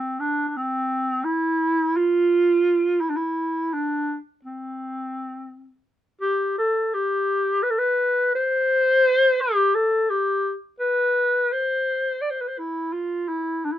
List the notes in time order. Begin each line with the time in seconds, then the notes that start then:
Already playing: C4
0.20 D4
0.48 D4
0.57 C4
1.24 E4
1.97 F4
3.01 E4
3.10 D4
3.16 E4
3.73 D4
4.45 C4
6.22 G4
6.58 A4
6.94 G4
7.63 B4
7.71 A4
7.79 B4
8.35 C5
9.41 G4
9.75 A4
10.10 G4
10.80 B4
11.52 C5
12.22 D5
12.30 C5
12.41 B4
12.48 C5
12.59 E4
12.93 F4
13.28 E4
13.65 D4
13.72 E4